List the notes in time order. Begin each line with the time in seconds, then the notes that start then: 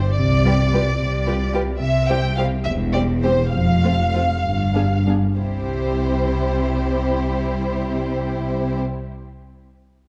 Already playing: C5
0.17 C2 C3 D5
0.44 G3 F4 G4 B4
0.73 G3 F4 G4 B4
0.99 C2 C3
1.27 G3 F4 G4 B4
1.53 G3 F4 G4 B4
1.80 C2 C3 E5
2.08 G3 E4 G4 C5 G5
2.36 G3 E4 G4 C5 F5
2.64 E1 E2 E5
2.93 G3 C4 G4 C5 D5
3.23 G3 C4 G4 C5
3.53 F1 F2 F5
3.84 A3 C4 F4 C5
4.14 A3 C4 F4 C5
4.43 G1 G2
4.75 G3 B3 D4 G#4
5.06 G3 B3 D4 G#4
5.37 C2 C3 G3 C4 E4 G4 C5